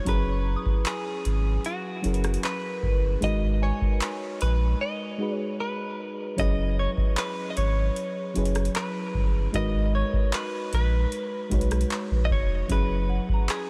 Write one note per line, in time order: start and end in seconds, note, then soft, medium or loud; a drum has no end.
0.05 0.56 F#1 loud
0.05 1.07 F#3 medium
0.05 1.07 C#4 medium
0.05 1.08 E4 medium
0.05 1.08 G#4 medium
0.05 0.89 B4 loud
0.05 1.11 A#5 medium
0.05 kick loud
0.05 closed hi-hat medium
0.09 0.14 A#4 medium
0.16 1.12 B4 medium
0.32 1.33 C#6 medium
0.56 1.55 D#6 medium
0.66 kick loud
0.86 1.65 G#4 loud
0.86 clap loud
0.86 closed hi-hat medium
1.25 1.58 G#1 medium
1.25 closed hi-hat medium
1.65 2.40 F#4 medium
1.65 closed hi-hat medium
2.02 2.37 F#1 medium
2.02 2.79 F#3 medium
2.02 2.79 C#4 medium
2.02 2.80 E4 medium
2.02 2.80 G#4 medium
2.02 closed hi-hat medium
2.07 2.12 A#4 medium
2.13 2.84 B4 medium
2.13 closed hi-hat medium
2.24 cross-stick medium
2.24 closed hi-hat medium
2.34 closed hi-hat medium
2.43 3.23 B4 medium
2.43 clap loud
2.43 closed hi-hat medium
2.83 3.16 G1 medium
2.83 kick loud
3.21 3.71 G#1 loud
3.21 4.22 G#3 medium
3.21 4.23 D#4 medium
3.21 4.24 F#4 medium
3.21 4.24 A#4 medium
3.21 3.63 D#5 loud
3.21 kick loud
3.21 closed hi-hat medium
3.25 4.25 B4 medium
3.62 4.41 C#5 loud
3.62 4.66 G#5 medium
3.81 kick loud
4.01 clap loud
4.01 closed hi-hat medium
4.41 4.74 A#1 loud
4.41 4.81 B4 medium
4.41 closed hi-hat medium
4.81 5.35 D#5 loud
5.18 5.95 G#3 medium
5.18 5.95 D#4 medium
5.18 5.96 F#4 medium
5.18 5.96 G#4 medium
5.22 5.97 B4 medium
5.35 5.56 C#5 loud
5.60 6.35 B4 medium
6.36 6.87 F#1 loud
6.36 7.38 F#3 medium
6.36 7.39 C#4 medium
6.36 7.39 E4 medium
6.36 7.40 G#4 medium
6.36 7.42 C#5 medium
6.36 6.79 D#5 loud
6.36 kick medium
6.36 closed hi-hat medium
6.41 7.41 B4 medium
6.79 6.90 C#5 loud
6.97 kick medium
7.17 7.50 B4 medium
7.17 clap loud
7.17 closed hi-hat medium
7.50 7.57 D#5 medium
7.57 7.89 G#1 loud
7.57 8.71 C#5 loud
7.57 closed hi-hat medium
7.96 closed hi-hat medium
8.34 8.69 F#1 medium
8.34 9.11 F#3 medium
8.34 9.11 C#4 medium
8.34 9.12 E4 medium
8.34 9.12 G#4 medium
8.34 closed hi-hat medium
8.38 9.13 B4 medium
8.45 closed hi-hat medium
8.55 cross-stick medium
8.55 closed hi-hat soft
8.65 closed hi-hat medium
8.75 9.51 B4 medium
8.75 clap loud
8.75 closed hi-hat medium
9.14 9.47 G1 medium
9.14 kick medium
9.52 10.03 G#1 loud
9.52 10.54 G#3 medium
9.52 10.55 D#4 medium
9.52 10.55 F#4 medium
9.52 10.56 A#4 medium
9.52 9.95 D#5 loud
9.52 kick loud
9.52 closed hi-hat medium
9.57 10.56 B4 medium
9.95 10.34 C#5 medium
10.13 kick medium
10.33 10.73 B4 medium
10.33 clap loud
10.33 closed hi-hat medium
10.73 11.05 A#1 loud
10.73 12.20 B4 loud
10.73 closed hi-hat medium
11.12 closed hi-hat medium
11.50 11.84 B1 medium
11.50 12.26 G#3 medium
11.50 12.27 D#4 medium
11.50 12.27 F#4 medium
11.50 12.28 B4 medium
11.50 kick loud
11.50 closed hi-hat medium
11.54 12.28 C#5 medium
11.61 closed hi-hat medium
11.71 cross-stick medium
11.71 closed hi-hat medium
11.81 closed hi-hat medium
11.90 clap loud
11.90 closed hi-hat medium
12.11 12.32 A#1 loud
12.25 12.31 D#5 medium
12.30 12.63 F1 medium
12.30 12.71 C#5 medium
12.30 kick medium
12.68 13.19 F#1 loud
12.68 13.70 F#3 medium
12.68 13.70 C#4 medium
12.68 13.70 E4 medium
12.68 13.70 G#4 medium
12.68 13.52 B4 loud
12.68 kick loud
12.68 closed hi-hat medium
12.72 13.70 B4 medium
13.09 13.70 F#5 medium
13.29 kick loud
13.34 13.70 A#5 medium
13.49 13.70 G#4 medium
13.49 clap loud
13.49 closed hi-hat medium